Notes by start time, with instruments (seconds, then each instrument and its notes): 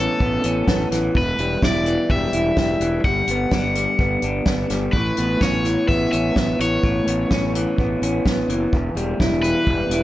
Already playing: clean electric guitar A2 E3 B3 C#4, overdriven electric guitar A4
0.20 fingered electric bass A1, clean electric guitar B3, kick
0.44 fingered electric bass A1, clean electric guitar C#4, closed hi-hat
0.67 fingered electric bass A1, clean electric guitar B3, kick, snare
0.91 fingered electric bass A1, clean electric guitar E3, snare, closed hi-hat
1.15 fingered electric bass E1, clean electric guitar E2, overdriven electric guitar B4, kick
1.38 fingered electric bass E1, clean electric guitar G3, closed hi-hat
1.62 fingered electric bass E1, clean electric guitar E4, overdriven electric guitar D5, kick, snare
1.86 clean electric guitar E3, closed hi-hat
2.09 fingered electric bass E1, clean electric guitar G3, overdriven electric guitar E5, kick
2.33 fingered electric bass E1, clean electric guitar E4, closed hi-hat
2.57 fingered electric bass E1, clean electric guitar G3, kick, snare
2.80 fingered electric bass E1, clean electric guitar E3, closed hi-hat
3.04 fingered electric bass G1, clean electric guitar G3, overdriven electric guitar F#5, kick
3.27 fingered electric bass G1, clean electric guitar B3, closed hi-hat
3.51 fingered electric bass G1, clean electric guitar D4, kick, snare
3.75 clean electric guitar G3, closed hi-hat
3.99 fingered electric bass G1, clean electric guitar B3, kick
4.22 fingered electric bass G1, clean electric guitar D4, closed hi-hat
4.46 fingered electric bass G1, clean electric guitar B3, kick, snare
4.70 fingered electric bass G1, clean electric guitar G3, snare, closed hi-hat
4.93 fingered electric bass A1, clean electric guitar A2, overdriven electric guitar B4, kick
5.17 fingered electric bass A1, clean electric guitar B3, closed hi-hat
5.41 fingered electric bass A1, clean electric guitar C#4, overdriven electric guitar C#5, kick, snare
5.65 clean electric guitar E3, closed hi-hat
5.88 fingered electric bass A1, clean electric guitar B3, overdriven electric guitar E5, kick
6.12 fingered electric bass A1, clean electric guitar C#4, overdriven electric guitar E5, closed hi-hat
6.36 fingered electric bass A1, clean electric guitar B3, kick, snare
6.59 fingered electric bass A1, clean electric guitar E3, overdriven electric guitar C#5, closed hi-hat
6.83 fingered electric bass A1, clean electric guitar A2, kick
7.07 fingered electric bass A1, clean electric guitar B3, closed hi-hat
7.31 fingered electric bass A1, clean electric guitar C#4, kick, snare
7.55 clean electric guitar E3, closed hi-hat
7.78 fingered electric bass A1, clean electric guitar B3, kick
8.02 fingered electric bass A1, clean electric guitar C#4, closed hi-hat
8.25 fingered electric bass A1, clean electric guitar B3, kick, snare
8.48 fingered electric bass F#1, clean electric guitar E3, closed hi-hat
8.73 fingered electric bass E1, clean electric guitar E2, kick
8.95 fingered electric bass E1, clean electric guitar G3, closed hi-hat
9.20 fingered electric bass E1, clean electric guitar E4, kick, snare
9.43 clean electric guitar E3, overdriven electric guitar B4, closed hi-hat
9.67 fingered electric bass E1, clean electric guitar G3, kick
9.89 fingered electric bass E1, clean electric guitar E4, closed hi-hat